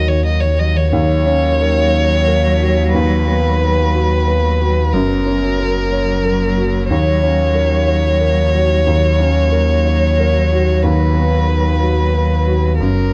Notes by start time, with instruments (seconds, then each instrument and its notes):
Already playing: grand piano D#2 F#4 A#4, sub bass D#2, ambient pad A#3 F#4 C#5
0.07 cello D#3, violin C#5
0.25 cello F#3, violin D#5
0.41 cello D#3, violin C#5
0.59 cello F#3, violin D#5
0.76 cello D#3, violin C#5
0.91 grand piano D#2, sub bass D#2, cello F#3, ambient pad A#3 F#4 C#5, violin C#5
1.26 grand piano C#4
1.61 grand piano A#4
1.94 grand piano C#5
2.28 grand piano A#4
2.60 grand piano F#4
2.94 grand piano D#2, ambient pad B3 B4, violin B4
3.28 grand piano B3
3.61 grand piano B4
3.94 grand piano F#4
4.27 grand piano B4
4.61 grand piano F#4
4.93 sub bass F#1, grand piano F#2, cello F#3, ambient pad A#3 C#5, violin A#4
5.26 grand piano C#4
5.60 grand piano A#4
5.92 grand piano C#5
6.25 grand piano A#4
6.57 grand piano F#4
6.90 grand piano D#2, sub bass D#2, ambient pad F#4, violin C#5
7.22 grand piano C#4
7.55 grand piano A#4
7.87 grand piano C#5
8.20 grand piano A#4
8.54 grand piano F#4
8.86 grand piano D#2, cello F#3
9.20 grand piano C#4
9.52 grand piano A#4
9.85 grand piano C#5
10.20 grand piano A#4
10.52 grand piano F#4
10.83 grand piano D#2, ambient pad B3 B4, violin B4
11.15 grand piano B3
11.47 grand piano B4
11.80 grand piano F#4
12.15 grand piano B4
12.47 grand piano F#4
12.80 sub bass F#1, grand piano F#2, cello F#3, ambient pad A#3 F#4 C#5, violin A#4